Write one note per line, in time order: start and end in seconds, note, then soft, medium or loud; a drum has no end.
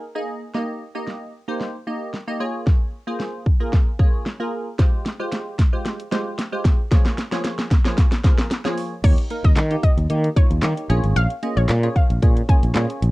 0.15 0.44 A#3 medium
0.15 0.44 D#4 medium
0.15 0.44 G#4 medium
0.15 0.44 D#5 loud
0.54 0.83 A#3 medium
0.54 0.84 D#4 medium
0.54 0.84 G4 medium
0.54 0.84 D#5 loud
0.54 snare medium
0.95 1.33 A#3 medium
0.95 1.33 D#4 medium
0.95 1.33 G4 medium
0.95 1.33 D#5 medium
1.07 snare medium
1.48 1.77 A#3 medium
1.48 1.77 D#4 medium
1.48 1.77 G4 medium
1.48 1.77 C5 medium
1.61 snare medium
1.87 2.16 A#3 medium
1.87 2.16 D#4 medium
1.87 2.16 G4 medium
1.87 2.16 D#5 medium
2.14 snare medium
2.27 2.39 A#3 medium
2.27 2.40 D#4 medium
2.27 2.40 G4 medium
2.27 2.40 D#5 medium
2.40 2.93 A#3 medium
2.40 2.93 F4 medium
2.40 2.93 G#4 medium
2.40 2.93 C#5 loud
2.67 kick loud
2.67 snare medium
3.07 3.45 A#3 medium
3.07 3.45 F4 medium
3.07 3.45 G#4 medium
3.07 3.45 C5 medium
3.20 snare medium
3.46 kick medium
3.60 3.89 A#3 medium
3.60 3.89 F4 medium
3.60 3.89 G#4 medium
3.60 3.89 A#4 medium
3.73 kick medium
3.73 snare medium
3.99 4.28 A#3 medium
3.99 4.29 F4 medium
3.99 4.29 G#4 medium
3.99 4.29 C#5 loud
3.99 kick loud
4.26 snare medium
4.40 4.69 A#3 medium
4.40 4.69 F4 medium
4.40 4.69 G#4 medium
4.40 4.69 A#4 medium
4.79 5.08 G#3 medium
4.79 5.08 F4 medium
4.79 5.08 G4 medium
4.79 5.08 C5 loud
4.79 kick loud
4.79 snare medium
4.79 closed hi-hat medium
5.06 snare medium
5.06 closed hi-hat medium
5.19 5.58 G#3 medium
5.19 5.58 F4 medium
5.19 5.58 G4 medium
5.19 5.58 C5 medium
5.32 snare medium
5.32 closed hi-hat medium
5.59 kick medium
5.59 snare loud
5.59 closed hi-hat medium
5.73 6.02 G#3 medium
5.73 6.02 F4 medium
5.73 6.02 G4 medium
5.73 6.02 C5 loud
5.85 snare medium
5.85 closed hi-hat medium
6.00 closed hi-hat medium
6.11 6.41 G#3 medium
6.11 6.41 F4 medium
6.11 6.41 G4 medium
6.11 6.41 C5 loud
6.11 snare loud
6.11 closed hi-hat medium
6.38 snare medium
6.38 closed hi-hat medium
6.52 6.81 G#3 medium
6.52 6.81 F4 medium
6.52 6.81 G4 medium
6.52 6.81 C5 medium
6.65 kick medium
6.65 snare medium
6.65 closed hi-hat medium
6.91 7.21 F3 medium
6.91 7.21 A#3 medium
6.91 7.21 F4 medium
6.91 7.21 G#4 medium
6.91 7.21 C#5 loud
6.91 kick loud
6.91 snare loud
6.91 closed hi-hat medium
7.06 snare loud
7.18 snare loud
7.18 closed hi-hat medium
7.32 7.70 F3 medium
7.32 7.70 A#3 medium
7.32 7.70 F4 medium
7.32 7.70 G#4 medium
7.32 7.70 C#5 medium
7.32 snare loud
7.32 closed hi-hat soft
7.44 snare loud
7.44 closed hi-hat medium
7.59 snare loud
7.71 kick medium
7.71 snare loud
7.71 closed hi-hat medium
7.85 8.14 F3 medium
7.85 8.14 A#3 medium
7.85 8.14 F4 medium
7.85 8.14 G#4 medium
7.85 8.14 C#5 loud
7.85 snare loud
7.98 kick loud
7.98 snare loud
7.98 closed hi-hat medium
8.12 snare loud
8.12 closed hi-hat medium
8.24 8.53 F3 medium
8.24 8.53 A#3 medium
8.24 8.53 F4 medium
8.24 8.54 G#4 medium
8.24 8.54 A#4 loud
8.24 kick loud
8.24 snare loud
8.24 closed hi-hat medium
8.38 snare loud
8.51 snare loud
8.51 closed hi-hat medium
8.65 8.94 F3 medium
8.65 8.94 A#3 medium
8.65 8.94 F4 medium
8.65 8.94 G#4 medium
8.65 8.94 C#5 loud
8.65 snare loud
8.78 open hi-hat medium
9.04 9.13 D#2 loud
9.04 9.24 A#3 medium
9.04 9.24 D#4 medium
9.04 9.24 G4 medium
9.04 9.15 C#5 loud
9.04 kick loud
9.04 closed hi-hat medium
9.04 crash loud
9.18 closed hi-hat medium
9.30 9.60 A#3 medium
9.30 9.60 D#4 medium
9.30 9.60 A#4 medium
9.30 closed hi-hat medium
9.44 9.53 D#2 loud
9.44 9.54 D#5 medium
9.44 kick loud
9.44 closed hi-hat medium
9.56 9.75 D#3 loud
9.56 snare loud
9.56 clap loud
9.56 closed hi-hat medium
9.71 10.00 A#3 medium
9.71 10.00 D#4 medium
9.71 10.00 G4 medium
9.71 closed hi-hat medium
9.83 10.04 D#5 medium
9.83 kick medium
9.83 closed hi-hat medium
9.98 10.06 D#2 loud
9.98 closed hi-hat soft
10.10 10.28 D#3 loud
10.10 10.30 A#3 medium
10.10 10.30 D#4 medium
10.10 10.30 G4 medium
10.10 closed hi-hat medium
10.24 closed hi-hat medium
10.37 10.56 A#3 medium
10.37 10.56 D#4 medium
10.37 10.57 F4 medium
10.37 10.75 C#5 medium
10.37 kick loud
10.37 closed hi-hat medium
10.51 10.59 D#2 loud
10.51 closed hi-hat medium
10.62 10.73 D#3 loud
10.62 10.88 A#3 medium
10.62 10.90 D#4 medium
10.62 10.90 G4 medium
10.62 snare loud
10.62 clap loud
10.62 closed hi-hat medium
10.77 closed hi-hat medium
10.90 10.99 A#1 loud
10.90 11.33 A#3 loud
10.90 11.33 C#4 medium
10.90 11.33 F4 medium
10.90 11.33 G#4 medium
10.90 11.33 C#5 loud
10.90 closed hi-hat medium
11.04 11.12 G#1 medium
11.04 closed hi-hat medium
11.16 11.26 A#1 loud
11.16 11.27 F5 loud
11.16 closed hi-hat medium
11.30 closed hi-hat medium
11.43 11.72 A#3 medium
11.43 11.72 C#4 medium
11.43 11.72 F4 medium
11.43 11.72 G#4 medium
11.43 11.72 D#5 medium
11.43 closed hi-hat medium
11.57 11.65 A#1 medium
11.57 11.66 C#5 medium
11.57 closed hi-hat soft
11.69 11.87 A#2 loud
11.69 snare loud
11.69 clap loud
11.69 closed hi-hat medium
11.83 12.12 A#3 medium
11.83 12.12 C#4 medium
11.83 12.12 F4 medium
11.83 12.12 G#4 medium
11.83 12.12 C#5 medium
11.83 closed hi-hat medium
11.96 12.16 F5 medium
11.96 kick medium
11.96 closed hi-hat medium
12.10 12.19 A#1 medium
12.10 closed hi-hat soft
12.22 12.41 A#2 loud
12.22 12.42 A#3 medium
12.22 12.42 C#4 medium
12.22 12.42 F4 medium
12.22 12.42 G#4 medium
12.22 12.42 C#5 medium
12.22 kick medium
12.22 closed hi-hat medium
12.37 closed hi-hat medium
12.49 12.69 A#3 medium
12.49 12.69 C#4 medium
12.49 12.69 F4 medium
12.49 12.69 G#4 medium
12.49 12.69 C#5 medium
12.49 12.87 G#5 medium
12.49 kick loud
12.49 closed hi-hat medium
12.63 12.72 A#1 loud
12.63 closed hi-hat medium
12.75 12.85 A#2 loud
12.75 13.11 A#3 medium
12.75 13.11 C#4 medium
12.75 13.11 F4 medium
12.75 13.11 G#4 medium
12.75 13.11 C#5 medium
12.75 snare loud
12.75 clap loud
12.75 closed hi-hat medium
12.90 closed hi-hat medium
13.02 13.11 A#1 medium
13.02 closed hi-hat medium